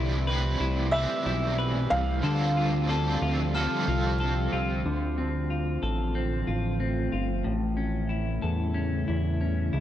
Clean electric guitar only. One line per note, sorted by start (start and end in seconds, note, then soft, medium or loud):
0.00 0.60 E4 medium
0.00 0.26 B4 medium
0.27 0.92 B4 medium
0.60 1.26 E4 medium
0.94 1.57 B4 medium
1.26 2.26 E4 medium
1.58 2.24 B4 medium
2.23 4.85 D3 medium
2.23 2.89 A4 medium
2.57 3.22 F4 medium
2.89 3.55 A4 medium
3.22 3.88 F4 medium
3.55 4.20 A4 medium
3.88 4.52 F4 medium
4.20 5.82 A4 medium
4.53 5.50 F4 medium
4.86 7.46 D3 medium
5.18 6.14 C4 medium
5.50 6.46 F4 medium
5.83 8.42 A4 medium
6.15 6.79 C4 medium
6.47 7.11 F4 soft
6.80 7.52 C4 soft
7.12 7.52 F4 soft
7.44 9.80 A2 medium
7.77 8.73 C#4 medium
8.09 9.07 E4 medium
8.42 9.80 A4 medium
8.74 9.40 C#4 medium
9.08 9.72 E4 medium
9.41 9.80 C#4 soft
9.73 9.80 E4 medium